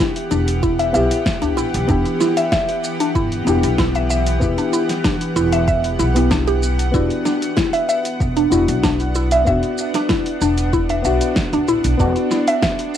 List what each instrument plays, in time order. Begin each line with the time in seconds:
Already playing: synth drone E3 B3 G4 F#5, synth stab B3 E4 G4
0.00 synth pluck E4, kick, shaker
0.16 open hi-hat, shaker
0.31 upright bass E1, synth pluck D4, shaker
0.48 open hi-hat, shaker
0.63 synth pluck E4, kick, shaker
0.79 synth pluck E5, open hi-hat, shaker
0.92 upright bass B1, synth stab B3 E4 G4, synth pluck E5, shaker
1.11 open hi-hat, shaker
1.26 kick, snare, shaker
1.42 upright bass D2, synth pluck D4, open hi-hat, shaker
1.57 upright bass A1, synth pluck E4, shaker
1.74 upright bass B1, open hi-hat, shaker
1.87 upright bass E1, synth stab B3 E4 G4, synth pluck D4, kick, shaker
2.05 open hi-hat, shaker
2.21 synth pluck E4, snare, shaker
2.37 synth pluck E5, open hi-hat, shaker
2.52 synth pluck E5, kick, snare, shaker
2.69 open hi-hat, shaker
2.84 shaker
3.00 synth pluck D4, open hi-hat, shaker
3.15 upright bass G1, synth pluck E4, kick, shaker
3.32 open hi-hat, shaker
3.45 upright bass E1, synth stab B3 E4, synth pluck D4, shaker
3.49 synth stab G4
3.63 upright bass B1, open hi-hat, shaker
3.78 synth pluck E4, kick, snare, shaker
3.95 synth pluck E5, open hi-hat, shaker
4.10 synth pluck E5, shaker
4.27 open hi-hat, shaker
4.40 upright bass E1, synth stab B3 E4, kick, shaker
4.44 synth stab G4
4.58 synth pluck D4, open hi-hat, shaker
4.73 synth pluck E4, shaker
4.89 snare, open hi-hat, shaker
5.04 synth pluck D4, kick, snare, shaker
5.21 open hi-hat, shaker
5.36 upright bass E1, synth pluck E4, shaker
5.53 synth pluck E5, open hi-hat, shaker
5.68 synth pluck E5, kick, shaker
5.84 open hi-hat, shaker
5.99 upright bass B1, synth pluck E4, shaker
6.14 synth stab B3 E4 G4, synth pluck B3, open hi-hat, shaker
6.31 synth pluck D4, kick, snare, shaker
6.47 synth pluck G4, open hi-hat, shaker
6.63 shaker
6.79 open hi-hat, shaker
6.92 upright bass E1, synth stab B3 D4, synth drone D4, synth pluck E4, kick, shaker
6.96 synth stab F#4
7.10 open hi-hat, shaker
7.25 synth pluck D4, snare, shaker
7.42 open hi-hat, shaker
7.57 synth pluck E4, kick, snare, shaker
7.73 synth pluck E5, open hi-hat, shaker
7.89 synth pluck E5, shaker
8.05 open hi-hat, shaker
8.20 upright bass E1, kick, shaker
8.37 synth pluck D4, open hi-hat, shaker
8.50 upright bass E1, synth stab B3 D4 F#4, synth pluck E4, shaker
8.68 upright bass B1, open hi-hat, shaker
8.83 synth pluck D4, kick, snare, shaker
9.00 open hi-hat, shaker
9.15 synth pluck E4, shaker
9.31 synth pluck E5, open hi-hat, shaker
9.45 upright bass E1, synth stab B3 D4 F#4, synth pluck E5, kick, shaker
9.63 open hi-hat, shaker
9.78 shaker
9.94 synth pluck D4, snare, open hi-hat, shaker
10.09 synth pluck E4, kick, snare, shaker
10.26 open hi-hat, shaker
10.41 upright bass E1, synth pluck D4, shaker
10.58 open hi-hat, shaker
10.73 synth pluck E4, kick, shaker
10.89 synth pluck E5, open hi-hat, shaker
11.02 upright bass B1, synth stab B3 D4, synth pluck E5, shaker
11.06 synth stab F#4
11.21 open hi-hat, shaker
11.36 kick, snare, shaker
11.53 upright bass D2, synth pluck D4, open hi-hat, shaker
11.68 upright bass A1, synth pluck E4, shaker
11.84 upright bass B1, open hi-hat, shaker
11.97 upright bass E1, synth stab B3 D4, synth pluck D4, kick, shaker
12.01 synth stab F#4
12.16 open hi-hat, shaker
12.31 synth pluck E4, snare, shaker
12.48 synth pluck E5, open hi-hat, shaker
12.63 synth pluck E5, kick, snare, shaker
12.79 open hi-hat, shaker